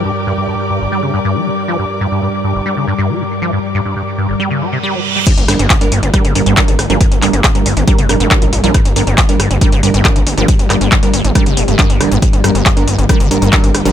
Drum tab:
CC |----------------|----------------|----------------|x---------------|
HH |----------------|----------------|----------------|xxoxxxoxxxoxxxox|
CP |----------------|----------------|----------------|----x-------x---|
SD |----------------|----------------|----------------|--r-----r-----r-|
BD |----------------|----------------|----------------|o---o---o---o---|

CC |----------------|----------------|----------------|----------------|
HH |xxoxxxoxxxoxxxox|xxoxxxoxxxoxxxox|xxoxxxoxxxoxxxox|xxoxxxoxxxoxxxox|
CP |--x-x-------x---|----x-------x---|--x-x-------x---|----x-------x---|
SD |----r-----r-----|r-----r-----r---|--r-----r-----r-|--r-----r-----r-|
BD |o---o---o---o---|o---o---o---o---|o---o---o---o---|o---o---o---o---|